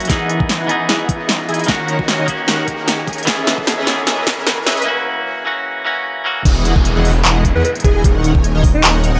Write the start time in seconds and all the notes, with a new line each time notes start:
Already playing: E3, riser
0.00 closed hi-hat
0.05 E3 B3, closed hi-hat
0.09 E3 D#4 E4 G#4 B4 D#5 F#5, kick, snare, closed hi-hat
0.29 closed hi-hat
0.40 E3 E4 G#4 D#5 G#5, kick
0.49 snare, closed hi-hat
0.60 E3 E4 G#4 D#5 F#5
0.67 E3 B3 D#4, closed hi-hat
0.71 G#4
0.89 E3 E4 G#4 D#5 F#5, snare, closed hi-hat
1.09 kick, closed hi-hat
1.20 E3 E4 G#4 D#5 F#5
1.29 snare, closed hi-hat
1.49 E3 E4 G#4 D#5 G#5, closed hi-hat
1.54 closed hi-hat
1.59 closed hi-hat
1.64 D#3 A#3, closed hi-hat
1.68 D#3 C#4 D#4 F#4 A#4 C#5 F#5, kick, snare, closed hi-hat
1.88 closed hi-hat
1.99 C#5 G#5, kick
2.08 snare, closed hi-hat
2.19 D#3 D#4 A#4 C#5 D#5
2.26 D#3 A#3 C#4 F#4, kick, closed hi-hat
2.48 D#3 D#4 A#4 C#5 F#5, snare, closed hi-hat
2.68 kick, closed hi-hat
2.79 D#3 D#4 A#4 C#5 F#5
2.88 snare, closed hi-hat
3.07 D#3 D#4 A#4 C#5 G#5, kick, closed hi-hat
3.13 closed hi-hat
3.18 closed hi-hat
3.23 E3 B3, closed hi-hat
3.27 E3 C#4 G#4 B4 D#5 E5, kick, snare, closed hi-hat
3.47 snare, closed hi-hat
3.58 G#4 B4 D#5 E5, kick
3.67 snare, closed hi-hat
3.78 C#4 G#4 B4 D#5 E5
3.85 E3 B3 C#4 G#4, snare, closed hi-hat
4.07 C#4 G#4 B4 D#5 E5, snare, closed hi-hat
4.27 kick, snare, closed hi-hat
4.37 C#4 G#4 B4 D#5 E5
4.47 snare, closed hi-hat
4.66 C#4 G#4 B4 D#5 E5, snare, closed hi-hat
4.72 closed hi-hat
4.77 closed hi-hat
4.82 E3 A#3, closed hi-hat
4.87 C#4 F#4
5.45 E3 A#3 C#4 F#4
5.85 E3 A#3 C#4 F#4
6.24 E3 A#3 C#4 F#4
6.45 E1 E3 G#3 B3 D#4 E4 G#4 D#5 F#5, kick, closed hi-hat, crash, downlifter
6.65 closed hi-hat
6.76 E1 E4 G#4 D#5 G#5, kick
6.85 closed hi-hat
6.96 E1 E3 E4 G#4 D#5 F#5
7.05 open hi-hat
7.25 E1 E3 E4 G#4 D#5 F#5, clap, closed hi-hat
7.45 kick, closed hi-hat
7.55 E2 E3 E4 G#4 B4 D#5 F#5
7.65 B4, closed hi-hat
7.75 closed hi-hat
7.80 closed hi-hat
7.84 E1 E3 E4 G#4 D#5 G#5, kick, closed hi-hat
7.95 G#4
8.04 D#1 C#3 D#3 F#3 A#3 D#4 G#4 A#4 C#5 F#5, kick, closed hi-hat
8.24 closed hi-hat
8.35 D#1 D#3 D#4 A#4 C#5 G#5, kick
8.44 closed hi-hat
8.55 D#1 D#3 D#4 A#4 C#5 D#5
8.64 kick, open hi-hat
8.74 D#4
8.84 D#1 D#3 D#4 A#4 C#5 F#5, clap, closed hi-hat
9.04 closed hi-hat
9.14 D#1 D#3 D#4 A#4 C#5 F#5